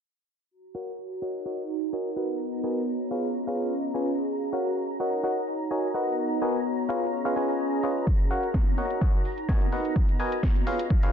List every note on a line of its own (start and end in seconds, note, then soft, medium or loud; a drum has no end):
0.51 1.60 F#4 medium
0.51 11.12 A#5 medium
0.75 0.92 F#4 medium
0.75 0.92 A#4 medium
0.75 0.92 C#5 medium
0.75 1.60 C#5 medium
0.75 0.92 F5 medium
0.75 0.92 F#5 medium
0.75 1.60 G#5 medium
0.75 open hi-hat medium
0.83 1.60 A#5 medium
1.22 2.55 D#4 medium
1.22 1.43 F#4 medium
1.22 1.43 A#4 medium
1.22 1.43 C#5 medium
1.22 1.43 D#5 medium
1.22 1.43 F#5 medium
1.22 open hi-hat medium
1.46 1.62 F#4 medium
1.46 1.62 A#4 medium
1.46 1.62 C#5 medium
1.46 1.62 D#5 medium
1.46 1.62 F#5 medium
1.65 2.55 F#5 medium
1.65 2.55 A#5 medium
1.69 open hi-hat medium
1.93 2.10 F#4 medium
1.93 2.10 A#4 medium
1.93 2.10 C#5 medium
1.93 2.10 D#5 medium
1.93 2.10 G#5 medium
2.16 3.58 B3 medium
2.16 2.61 F#4 medium
2.16 2.61 A#4 medium
2.16 2.61 B4 medium
2.16 2.61 D#5 medium
2.16 2.61 F#5 medium
2.16 open hi-hat loud
2.55 3.11 F#4 medium
2.55 3.58 C#5 medium
2.59 4.58 D#5 medium
2.64 2.81 F#4 medium
2.64 2.81 A#4 medium
2.64 2.81 B4 medium
2.64 2.81 D#5 medium
2.64 2.81 G#5 loud
2.64 open hi-hat medium
3.11 4.58 C#4 medium
3.11 3.28 F4 medium
3.11 3.28 G#4 medium
3.11 3.28 B4 medium
3.11 3.28 C#5 medium
3.11 3.28 F5 medium
3.11 open hi-hat loud
3.47 3.73 F4 medium
3.47 3.73 G#4 medium
3.47 3.73 B4 medium
3.47 3.73 C#5 medium
3.47 3.73 F5 medium
3.58 open hi-hat loud
3.64 4.58 G#4 medium
3.64 4.58 F5 medium
3.71 open hi-hat medium
3.94 4.10 F4 medium
3.94 4.10 G#4 medium
3.94 4.10 B4 medium
3.94 4.10 C#5 medium
3.94 4.10 G#5 medium
4.05 open hi-hat loud
4.29 5.38 F#4 medium
4.53 4.69 F#4 medium
4.53 4.69 A#4 medium
4.53 4.69 C#5 medium
4.53 4.69 F5 medium
4.53 4.69 F#5 medium
4.53 5.38 G#5 medium
4.53 open hi-hat loud
4.61 5.38 C#5 medium
4.61 5.38 A#5 medium
5.00 6.33 D#4 medium
5.00 5.21 F#4 medium
5.00 5.21 A#4 medium
5.00 5.21 C#5 medium
5.00 5.21 D#5 medium
5.00 5.21 F#5 medium
5.00 open hi-hat loud
5.23 5.40 F#4 medium
5.23 5.40 A#4 medium
5.23 5.40 C#5 medium
5.23 5.40 D#5 medium
5.23 5.40 F#5 medium
5.43 6.33 F#5 medium
5.43 6.33 A#5 medium
5.47 open hi-hat loud
5.71 5.88 F#4 medium
5.71 5.88 A#4 medium
5.71 5.88 C#5 medium
5.71 5.88 D#5 medium
5.71 5.88 G#5 medium
5.94 7.36 B3 medium
5.94 6.39 F#4 medium
5.94 6.39 A#4 medium
5.94 6.39 B4 medium
5.94 6.39 D#5 medium
5.94 6.39 F#5 medium
5.94 open hi-hat loud
6.12 7.36 C#5 medium
6.36 6.89 F#4 medium
6.36 8.36 D#5 medium
6.42 6.58 F#4 medium
6.42 6.58 A#4 medium
6.42 6.58 B4 medium
6.42 6.58 D#5 medium
6.42 6.58 G#5 loud
6.42 open hi-hat loud
6.89 8.36 C#4 medium
6.89 7.06 F4 medium
6.89 7.06 G#4 medium
6.89 7.06 B4 medium
6.89 7.06 C#5 medium
6.89 7.06 F5 medium
6.89 open hi-hat loud
6.97 8.36 G#4 medium
7.25 7.34 F4 medium
7.25 7.34 G#4 medium
7.25 7.34 B4 medium
7.25 7.34 C#5 medium
7.25 7.34 F5 loud
7.36 7.81 F4 medium
7.36 7.81 G#4 medium
7.36 7.81 B4 medium
7.36 7.81 C#5 medium
7.36 7.81 G#5 medium
7.36 open hi-hat loud
7.42 8.36 F5 medium
7.49 open hi-hat medium
7.83 8.06 F4 medium
7.83 8.06 G#4 medium
7.83 8.06 B4 medium
7.83 8.06 C#5 medium
7.83 8.06 D#5 medium
7.83 open hi-hat loud
8.07 9.16 F#4 medium
8.07 kick loud
8.20 closed hi-hat soft
8.31 8.47 F#4 medium
8.31 8.47 A#4 medium
8.31 8.47 C#5 medium
8.31 8.47 F5 medium
8.31 8.47 F#5 medium
8.31 open hi-hat loud
8.39 9.16 C#5 medium
8.39 9.16 G#5 medium
8.39 9.16 A#5 medium
8.39 closed hi-hat medium
8.54 kick medium
8.54 snare loud
8.67 closed hi-hat soft
8.78 10.11 D#4 medium
8.78 8.99 F#4 medium
8.78 8.99 A#4 medium
8.78 8.99 C#5 medium
8.78 8.99 D#5 medium
8.78 8.99 F#5 medium
8.78 open hi-hat medium
8.90 closed hi-hat medium
9.01 9.18 F#4 medium
9.01 9.18 A#4 medium
9.01 9.18 C#5 medium
9.01 9.18 D#5 medium
9.01 9.18 F#5 medium
9.01 kick loud
9.21 10.11 F#5 medium
9.21 10.11 A#5 medium
9.25 open hi-hat loud
9.38 closed hi-hat medium
9.49 9.66 F#4 medium
9.49 9.66 A#4 medium
9.49 9.66 C#5 medium
9.49 9.66 D#5 medium
9.49 9.66 G#5 medium
9.49 kick medium
9.49 snare loud
9.61 closed hi-hat soft
9.72 11.12 B3 medium
9.72 10.17 F#4 medium
9.72 10.17 A#4 medium
9.72 10.17 B4 medium
9.72 10.17 D#5 medium
9.72 10.17 F#5 medium
9.72 open hi-hat loud
9.85 closed hi-hat medium
9.93 10.67 F#4 medium
9.93 kick loud
10.09 closed hi-hat soft
10.15 11.12 C#5 medium
10.15 11.12 D#5 medium
10.20 10.36 F#4 medium
10.20 10.36 A#4 medium
10.20 10.36 B4 medium
10.20 10.36 D#5 medium
10.20 10.36 G#5 medium
10.20 open hi-hat medium
10.32 closed hi-hat medium
10.43 kick medium
10.43 snare loud
10.56 closed hi-hat soft
10.67 11.12 C#4 medium
10.67 10.84 F4 medium
10.67 10.84 G#4 medium
10.67 10.84 B4 medium
10.67 10.84 C#5 medium
10.67 10.84 F5 medium
10.67 open hi-hat medium
10.79 closed hi-hat medium
10.90 kick loud
10.96 11.12 G#4 medium
11.03 11.12 F4 medium
11.03 11.12 G#4 medium
11.03 11.12 B4 medium
11.03 11.12 C#5 medium
11.03 11.12 F5 loud
11.03 closed hi-hat soft